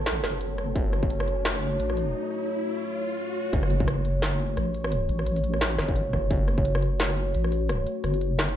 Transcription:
Already playing: A1 A3 F#4 A4 C#5, riser
0.06 snare, closed hi-hat
0.24 F#1, cross-stick, snare, closed hi-hat
0.41 closed hi-hat
0.58 cross-stick, closed hi-hat
0.76 F#1, kick, closed hi-hat
0.93 cross-stick, closed hi-hat
1.03 kick
1.10 closed hi-hat
1.20 cross-stick
1.28 closed hi-hat
1.45 snare, closed hi-hat
1.55 cross-stick, open hi-hat
1.62 closed hi-hat
1.80 A1, closed hi-hat
1.90 cross-stick
1.97 open hi-hat
3.53 F#1 A3 F#4 C#5, kick, closed hi-hat, impact
3.63 cross-stick
3.70 closed hi-hat
3.80 kick
3.88 cross-stick, closed hi-hat
4.05 closed hi-hat
4.22 cross-stick, snare, closed hi-hat
4.32 open hi-hat
4.40 closed hi-hat
4.57 A1, cross-stick, closed hi-hat
4.75 open hi-hat
4.84 cross-stick
4.92 closed hi-hat
5.09 A1, closed hi-hat
5.19 cross-stick
5.27 closed hi-hat
5.36 open hi-hat
5.44 closed hi-hat
5.54 cross-stick
5.61 snare, closed hi-hat
5.71 open hi-hat
5.79 F#1, cross-stick, snare, closed hi-hat
5.88 kick
5.96 closed hi-hat
6.13 kick, cross-stick
6.31 F#1, kick, closed hi-hat
6.48 cross-stick, closed hi-hat
6.58 kick
6.65 closed hi-hat
6.75 cross-stick
6.82 closed hi-hat
7.00 snare, closed hi-hat
7.10 cross-stick, open hi-hat
7.17 closed hi-hat
7.35 A1, closed hi-hat
7.44 cross-stick
7.52 open hi-hat
7.69 cross-stick, closed hi-hat
7.87 closed hi-hat
8.04 F#1, cross-stick, closed hi-hat
8.14 open hi-hat
8.21 closed hi-hat
8.39 cross-stick, snare, closed hi-hat
8.49 open hi-hat

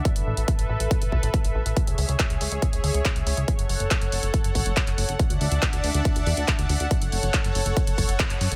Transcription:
Already playing: E5
0.05 A4 B4, kick, closed hi-hat
0.16 A1, closed hi-hat
0.27 A1
0.37 A1, closed hi-hat
0.48 kick, closed hi-hat
0.59 A1, closed hi-hat
0.69 A1
0.80 A1, closed hi-hat
0.91 kick, closed hi-hat
1.02 A1, closed hi-hat
1.12 B1, kick
1.23 A1, closed hi-hat
1.34 kick, closed hi-hat
1.44 A1, closed hi-hat
1.55 A1
1.66 A1, closed hi-hat
1.77 G#4 C#5, kick, closed hi-hat
1.87 C#2, closed hi-hat
1.98 C#2, open hi-hat
2.09 C#2, closed hi-hat
2.19 kick, clap, closed hi-hat
2.30 C#2, closed hi-hat
2.41 C#2, open hi-hat
2.52 C#2, closed hi-hat
2.62 kick, closed hi-hat
2.73 C#2, closed hi-hat
2.84 D2, open hi-hat
2.94 C#2, closed hi-hat
3.05 kick, clap, closed hi-hat
3.16 C#2, closed hi-hat
3.27 C#2, open hi-hat
3.37 C#2, closed hi-hat
3.48 A4 F#5, kick, closed hi-hat
3.59 F#1, closed hi-hat
3.69 F#1, open hi-hat
3.80 F#1, closed hi-hat
3.91 kick, clap, closed hi-hat
4.02 F#1, closed hi-hat
4.12 F#1, open hi-hat
4.23 F#1, closed hi-hat
4.34 kick, closed hi-hat
4.44 F#1, closed hi-hat
4.55 G#1, kick, open hi-hat
4.66 F#1, closed hi-hat
4.77 kick, clap, closed hi-hat
4.87 F#1, clap, closed hi-hat
4.98 F#1, open hi-hat
5.09 F#1, closed hi-hat
5.19 D4 D5 E5 A5, kick, closed hi-hat
5.30 D2, closed hi-hat
5.41 D2, open hi-hat
5.52 D2, closed hi-hat
5.62 kick, clap, closed hi-hat
5.73 D2, closed hi-hat
5.84 D2, open hi-hat
5.94 D2, closed hi-hat
6.05 kick, closed hi-hat
6.16 D2, closed hi-hat
6.27 E2, open hi-hat
6.37 D2, closed hi-hat
6.48 kick, clap, closed hi-hat
6.59 D2, closed hi-hat
6.69 D2, open hi-hat
6.80 D2, closed hi-hat
6.91 A4 C#5, kick, closed hi-hat
7.02 F#1, closed hi-hat
7.12 F#1, open hi-hat
7.23 F#1, closed hi-hat
7.34 kick, clap, closed hi-hat
7.44 F#1, closed hi-hat
7.55 F#1, open hi-hat
7.66 F#1, closed hi-hat
7.77 kick, closed hi-hat
7.87 F#1, closed hi-hat
7.98 F#1, kick, open hi-hat
8.09 F#1, closed hi-hat
8.19 kick, clap, closed hi-hat
8.30 F#1, clap, closed hi-hat
8.41 F#2, open hi-hat
8.52 F#1, closed hi-hat

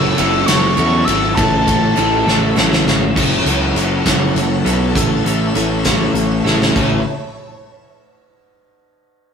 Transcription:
Already playing: F#1 F#3 C#4 E4 F#4 A4 C#5 F#5 A5 E6
0.17 F#1 F#3 C#4 E4 F#4 A4 E6, clap, ride
0.46 F#1 F#3 C#4 E4 F#4 A4 C#6, snare, ride
0.74 E4 C#6
0.78 E2 F#3 C#4 F#4 A4, clap, ride
1.05 G#1 E6, ride
1.35 A1 A3 E5 A5 E6, kick, clap, ride
1.39 C#4 E4 A4
1.67 A1, kick, ride
1.83 clap
1.97 A1 A3 C#4 E4 A4, clap, ride
2.13 clap
2.26 A1 A3 C#4 E4 A4, snare, clap
2.57 A1 A3 C#4 E4 A4, snare, clap
2.73 snare
2.86 G#1, snare
3.15 F#1 F#3 C#4 E4 F#4 A4 C#5 F#5 A5 E6, kick, crash
3.45 C#2 F#3 C#4 E4 F#4 A4, closed hi-hat
3.75 F#1 F#3 C#4 E4 F#4 A4, closed hi-hat
4.05 F#1 F#3 C#4 E4 F#4 A4, kick, snare, closed hi-hat
4.34 F#1, closed hi-hat
4.64 B1 F#3 C#4 E4 F#4 A4, closed hi-hat
4.94 A1 A3 C#4 E4 A4 E5, kick, closed hi-hat
5.24 A1 A3 C#4 E4 A4, closed hi-hat
5.55 A1 A3 C#4 E4 A4, closed hi-hat
5.85 A3 C#4 E4 A4, kick, snare, closed hi-hat
6.14 A1, closed hi-hat
6.44 A1 A3 C#4 E4 A4, snare
6.62 snare
6.74 A1 A2 E3 A3 C#4 E4 A4 C#5 E5, kick, crash

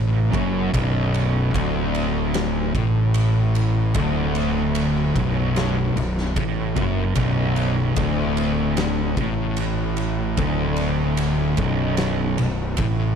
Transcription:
Already playing: A1 A2
0.32 F#1 F#2, kick, ride
0.73 B0 B1, kick, ride
1.14 ride
1.54 D1 D2, kick, ride
1.95 ride
2.34 snare, ride
2.74 A1 A2, kick, ride
3.14 ride
3.55 ride
3.94 D1 D2, kick, ride
4.35 ride
4.75 ride
5.15 B0 B1, kick, ride
5.56 snare, ride
5.95 B0 B1, ride
6.18 snare
6.36 A1 A2, kick, ride
6.76 F#1 F#2, kick, ride
7.15 B0 B1, kick, ride
7.56 ride
7.96 D1 D2, kick, ride
8.37 ride
8.77 snare, ride
9.17 A1 A2, kick, ride
9.57 ride
9.97 ride
10.37 D1 D2, kick, ride
10.76 ride
11.17 ride
11.57 B0 B1, kick, ride
11.97 snare, ride
12.38 B0 B1, ride
12.77 A1 A2, kick, ride

